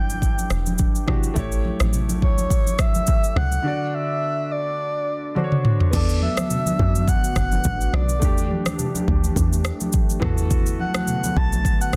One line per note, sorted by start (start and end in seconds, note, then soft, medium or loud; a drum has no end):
0.00 0.39 G1 medium
0.00 1.02 E3 medium
0.00 1.03 D4 medium
0.00 1.04 E4 medium
0.00 1.05 G4 medium
0.00 1.08 G5 loud
0.10 high conga medium
0.10 shaker medium
0.22 kick medium
0.22 shaker medium
0.38 high conga medium
0.38 shaker medium
0.50 0.86 E1 medium
0.50 cross-stick loud
0.50 shaker soft
0.66 high conga medium
0.66 shaker soft
0.78 kick medium
0.78 shaker medium
0.95 shaker soft
1.06 1.36 E3 medium
1.06 1.36 D4 medium
1.06 1.36 F#4 medium
1.06 1.35 G4 medium
1.06 kick medium
1.06 cross-stick medium
1.06 high conga medium
1.06 low conga medium
1.23 shaker medium
1.34 1.72 A1 loud
1.34 3.60 A3 medium
1.34 3.60 E4 medium
1.34 3.61 G4 medium
1.34 kick loud
1.34 shaker medium
1.39 3.62 C#5 medium
1.52 shaker soft
1.65 high conga medium
1.80 2.24 A1 medium
1.80 cross-stick loud
1.80 high conga medium
1.80 shaker soft
1.93 low conga medium
1.93 shaker medium
2.09 high conga medium
2.09 shaker medium
2.22 2.58 C#2 medium
2.22 2.82 C#5 loud
2.22 kick medium
2.38 high conga medium
2.38 shaker medium
2.50 kick medium
2.50 shaker medium
2.67 high conga medium
2.67 shaker medium
2.79 3.36 E5 loud
2.79 kick medium
2.79 cross-stick loud
2.79 shaker medium
2.94 high conga medium
2.94 shaker soft
3.07 kick medium
3.07 shaker medium
3.24 shaker soft
3.36 3.59 C#2 medium
3.36 3.88 F#5 loud
3.36 cross-stick medium
3.36 high conga medium
3.36 low conga medium
3.52 shaker medium
3.62 5.32 D3 medium
3.62 5.32 D4 medium
3.62 5.33 F#4 medium
3.67 5.34 D5 medium
3.88 3.96 F#5 medium
3.94 4.53 E5 loud
4.51 5.65 D5 loud
5.35 5.93 D3 medium
5.35 5.92 D4 soft
5.35 5.94 F#4 medium
5.35 5.44 C5 soft
5.35 high tom medium
5.44 5.97 C#5 medium
5.52 mid tom medium
5.65 mid tom medium
5.80 floor tom medium
5.91 6.29 E2 loud
5.91 8.20 D3 medium
5.91 11.96 A3 medium
5.91 8.17 B3 medium
5.91 8.20 B3 medium
5.91 8.18 D4 medium
5.91 8.20 F#4 medium
5.91 6.20 D5 medium
5.91 kick loud
5.91 crash medium
5.91 shaker medium
5.96 8.19 A4 medium
6.09 shaker soft
6.22 7.10 E5 loud
6.22 high conga medium
6.37 cross-stick loud
6.37 high conga medium
6.37 shaker soft
6.50 low conga medium
6.50 shaker medium
6.66 high conga medium
6.66 shaker medium
6.79 7.15 F#2 loud
6.79 kick medium
6.95 high conga medium
6.95 shaker medium
7.08 7.36 F#5 loud
7.08 kick medium
7.08 shaker medium
7.24 shaker medium
7.36 7.59 F#1 medium
7.36 7.95 F#5 loud
7.36 kick medium
7.36 cross-stick loud
7.36 shaker soft
7.52 high conga medium
7.52 shaker soft
7.64 7.88 A1 medium
7.64 kick loud
7.64 shaker medium
7.81 shaker soft
7.93 8.23 B1 medium
7.93 8.51 D5 loud
7.93 cross-stick medium
7.93 high conga medium
7.93 low conga medium
8.09 shaker medium
8.19 8.58 E2 loud
8.19 10.20 E3 medium
8.19 10.17 A3 medium
8.19 10.18 D4 medium
8.19 10.20 D4 medium
8.19 10.20 G4 medium
8.19 kick loud
8.19 shaker medium
8.24 10.19 G4 medium
8.38 shaker soft
8.51 high conga medium
8.66 cross-stick loud
8.66 high conga medium
8.66 shaker soft
8.79 low conga medium
8.79 shaker medium
8.95 high conga medium
8.95 shaker medium
9.08 9.31 D2 medium
9.08 kick loud
9.24 high conga medium
9.24 shaker medium
9.36 9.72 E2 loud
9.36 kick medium
9.36 shaker medium
9.53 shaker medium
9.65 cross-stick loud
9.65 shaker soft
9.80 high conga medium
9.80 shaker soft
9.93 kick medium
9.93 shaker medium
10.10 shaker soft
10.20 10.81 E2 loud
10.20 11.96 D3 medium
10.20 11.96 E3 medium
10.20 11.96 B3 medium
10.20 11.96 F#4 medium
10.20 kick medium
10.20 cross-stick medium
10.20 mid tom loud
10.20 high conga medium
10.20 low conga medium
10.25 11.96 A4 medium
10.38 shaker medium
10.51 kick loud
10.51 shaker medium
10.66 shaker soft
10.79 10.94 F#5 medium
10.79 high conga medium
10.94 11.38 F#5 loud
10.94 cross-stick loud
10.94 high conga medium
10.94 shaker soft
11.07 low conga medium
11.07 shaker medium
11.23 high conga medium
11.23 shaker medium
11.37 11.72 B1 medium
11.37 11.52 A5 loud
11.37 kick medium
11.52 11.79 A5 loud
11.52 high conga medium
11.52 shaker medium
11.65 kick medium
11.65 shaker medium
11.81 11.96 F#5 loud
11.81 shaker medium
11.93 11.96 A1 medium
11.93 kick medium
11.93 cross-stick loud
11.93 shaker medium